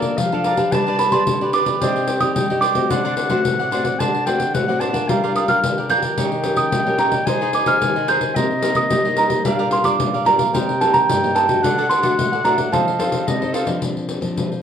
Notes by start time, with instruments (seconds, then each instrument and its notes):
Already playing: nylon-string guitar A#3 D4 F4 A4, cavaquinho A#4 D5 F5 A5, clarinet D5
0.02 pandeiro
0.17 nylon-string guitar F3, clarinet F5, pandeiro
0.32 nylon-string guitar D4 F4 A4, cavaquinho D5 F5 A5, pandeiro
0.44 cavaquinho A#4 D5 F5 A5, pandeiro
0.57 nylon-string guitar D4 G4 B4, cavaquinho D5 F5 A5, pandeiro
0.72 nylon-string guitar G3, cavaquinho D4 G4 B4 D5, clarinet A5, pandeiro
0.86 cavaquinho D4 G4 B4 D5, pandeiro
0.99 cavaquinho D4 G4 B4 D5, celesta B5, pandeiro
1.12 nylon-string guitar D4 G4 B4, cavaquinho D4 G4 B4 D5, celesta C6, pandeiro
1.27 nylon-string guitar D3, pandeiro
1.41 nylon-string guitar D4 G4 B4, cavaquinho G4 B4 D5, pandeiro
1.53 cavaquinho D4 G4 B4 D5, celesta D6, pandeiro
1.66 cavaquinho G4 B4 D5, pandeiro
1.81 nylon-string guitar C4 D#4 G4 D5, cavaquinho D4 G4 C5 D#5, clarinet G5, pandeiro
1.96 pandeiro
2.08 cavaquinho G4 C5 D#5, pandeiro
2.21 nylon-string guitar D#4 G4 D5, celesta D#6, pandeiro
2.35 nylon-string guitar G3, clarinet G5, pandeiro
2.50 nylon-string guitar D#4 G4 D5, cavaquinho G4 C5 D#5, pandeiro
2.61 cavaquinho D4 G4 C5 D#5, celesta D6, pandeiro
2.75 nylon-string guitar A3 C4 F#4, cavaquinho G4 C5 D#5, pandeiro
2.90 nylon-string guitar D3, cavaquinho D4 C5 D5 F#5, clarinet F#5, pandeiro
3.05 cavaquinho D4 C5 D5 F#5, pandeiro
3.17 cavaquinho D4 C5 D5 F#5, pandeiro
3.30 nylon-string guitar A3 C4 F#4, cavaquinho D4 C5 D5 F#5, pandeiro
3.45 nylon-string guitar A2, pandeiro
3.59 cavaquinho C5 D5 F#5, pandeiro
3.71 nylon-string guitar A3 C4 F#4, cavaquinho D4 C5 D5 F#5, pandeiro
3.85 cavaquinho C5 D5 F#5, pandeiro
3.99 nylon-string guitar D3, cavaquinho D4 C5 D5 F#5, clarinet A5, pandeiro
4.14 pandeiro
4.26 nylon-string guitar A3 C4 F#4, cavaquinho D4 C5 D5 F#5, clarinet G5, pandeiro
4.40 pandeiro
4.54 nylon-string guitar A2 A3 C4 F#4, clarinet F#5, pandeiro
4.68 nylon-string guitar A3 C4 F#4, cavaquinho C5 D5 F#5, pandeiro
4.80 cavaquinho D4 C5 D5 F#5, clarinet A5, pandeiro
4.93 nylon-string guitar D4 F4 A#4, cavaquinho C5 D5 F#5, pandeiro
5.09 nylon-string guitar G3, cavaquinho F4 A#4 D5 G5, clarinet F5, pandeiro
5.24 cavaquinho F4 A#4 D5 G5, pandeiro
5.36 cavaquinho F4 A#4 D5 G5, celesta D#6, pandeiro
5.48 nylon-string guitar D4 F4 A#4, cavaquinho F4 A#4 D5 G5, celesta F6, pandeiro
5.63 nylon-string guitar D3, pandeiro
5.77 cavaquinho A#4 D5 G5, pandeiro
5.89 nylon-string guitar D4 F4 A#4, cavaquinho F4 A#4 D5 G5, celesta G6, pandeiro
6.02 cavaquinho A#4 D5 G5, pandeiro
6.18 nylon-string guitar D#3 C#4 G4 A#4, cavaquinho D#4 G4 C#5 D#5, clarinet G5, pandeiro
6.32 pandeiro
6.44 nylon-string guitar C#4 G4 A#4, cavaquinho D#4 G4 C#5 D#5, pandeiro
6.57 celesta D#6, pandeiro
6.72 nylon-string guitar A#2, pandeiro
6.86 nylon-string guitar C#4 G4 A#4, cavaquinho G4 C#5 D#5, pandeiro
6.98 nylon-string guitar C#4 G4 A#4, cavaquinho D#4 G4 C#5 D#5, celesta A#5, pandeiro
7.12 cavaquinho G4 C#5 D#5, pandeiro
7.26 nylon-string guitar G#3 D#4 G#4 C5, cavaquinho D#4 G#4 C5 D#5, clarinet G#5, pandeiro
7.41 cavaquinho D#4 G#4 C5 D#5, pandeiro
7.53 cavaquinho D#4 C5 D#5, celesta D6, pandeiro
7.66 nylon-string guitar D#4 G#4 C5, cavaquinho D#4 G#4 C5 D#5, celesta F6, pandeiro
7.81 nylon-string guitar D#3, pandeiro
7.96 cavaquinho G#4 C5 D#5, pandeiro
8.08 nylon-string guitar D#4 G#4 C5, cavaquinho D#4 G#4 C5 D#5, celesta G6, pandeiro
8.21 cavaquinho G#4 C5 D#5, pandeiro
8.36 nylon-string guitar C3 A#3 D#4 G4, cavaquinho A#4 C5 D#5, clarinet D#5, pandeiro
8.51 pandeiro
8.62 nylon-string guitar A#3 D#4 G4, cavaquinho A#4 C5 D#5, pandeiro
8.75 celesta D#6, pandeiro
8.90 nylon-string guitar G3 A#3 D#4 G4, pandeiro
9.05 nylon-string guitar A#3 D#4 G4, cavaquinho C5 D#5, pandeiro
9.17 cavaquinho A#4 C5 D#5, celesta A#5, pandeiro
9.29 cavaquinho C5 D#5, pandeiro
9.45 nylon-string guitar A#2 G3 D4 F4, cavaquinho G4 A#4 D5 F5, clarinet F5, pandeiro
9.59 cavaquinho G4 A#4 D5 F5, pandeiro
9.71 cavaquinho G4 A#4 D5 F5, celesta C6, pandeiro
9.84 nylon-string guitar G3 D4 F4, cavaquinho G4 A#4 D5 F5, celesta D6, pandeiro
10.00 nylon-string guitar A#2, pandeiro
10.14 cavaquinho A#4 D5 F5, pandeiro
10.25 nylon-string guitar G3 D4 F4, cavaquinho G4 A#4 D5 F5, celesta A#5, pandeiro
10.39 cavaquinho A#4 D5 F5, pandeiro
10.53 nylon-string guitar C3 A#3 D#4 G4, cavaquinho A#4 C5 D#5, clarinet G5, pandeiro
10.69 pandeiro
10.81 nylon-string guitar A#3 D#4 G4, cavaquinho A#4 C5 D#5, celesta A5, pandeiro
10.93 celesta A#5, pandeiro
11.09 nylon-string guitar G2 A#3 D#4 G4, pandeiro
11.23 nylon-string guitar A#3 D#4 G4, cavaquinho C5 D#5, pandeiro
11.35 cavaquinho A#4 C5 D#5, celesta A5, pandeiro
11.48 nylon-string guitar A3 D4 F#4, cavaquinho C5 D#5, pandeiro
11.63 nylon-string guitar D3, cavaquinho D4 A4 D5 F#5, clarinet F#5, pandeiro
11.78 cavaquinho D4 A4 D5 F#5, pandeiro
11.89 cavaquinho D4 A4 D5 F#5, celesta C6, pandeiro
12.02 nylon-string guitar A3 D4 F#4, cavaquinho D4 A4 D5 F#5, pandeiro
12.18 nylon-string guitar A2, pandeiro
12.32 cavaquinho A4 D5 F#5, pandeiro
12.44 nylon-string guitar A3 D4 F#4, cavaquinho D4 A4 D5 F#5, celesta A#5, pandeiro
12.57 cavaquinho A4 D5 F#5, pandeiro
12.72 nylon-string guitar F3 C4 D#4 A4, cavaquinho F4 A4 C5 D#5, clarinet F5, celesta A5, pandeiro
12.87 pandeiro
12.98 nylon-string guitar C4 D#4 A4, cavaquinho F4 A4 C5 D#5, pandeiro
13.12 pandeiro
13.27 nylon-string guitar C3, clarinet D#5, pandeiro
13.41 nylon-string guitar C4 D#4 A4, cavaquinho A4 C5 D#5, pandeiro
13.54 cavaquinho F4 A4 C5 D#5, clarinet F5, pandeiro
13.66 nylon-string guitar F3 C4 D4, cavaquinho A4 C5 D#5, pandeiro
13.82 nylon-string guitar A#2, pandeiro
13.97 pandeiro
14.09 pandeiro
14.21 nylon-string guitar F3 C4 D4, pandeiro
14.36 nylon-string guitar F3, pandeiro
14.52 pandeiro